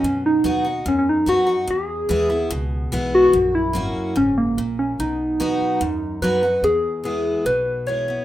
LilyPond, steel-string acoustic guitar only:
\new Staff \with { instrumentName = "Steel-string acoustic guitar" } { \time 4/4 \key e \major \tempo 4 = 146 << { r4 <fis b dis' fis'>8 <dis' fis'>8 r4 <fis b dis' fis'>8 <dis' fis'>8 | r4 <e gis b e'>8 <b e'>8 r4 <e gis b e'>4 | r4 <fis ais cis' fis'>4 r2 | r4 <fis b dis' fis'>4 r4 <fis b dis' fis'>8 <dis' fis'>8 |
r4 <e gis b e'>4 r4 <e gis b e'>8 <b e'>8 | } \\ { b,2 fis,2 | e,2 b,2 | fis,2 gis,4 ais,4 | b,2 fis,2 |
e,2 b,2 | } >> }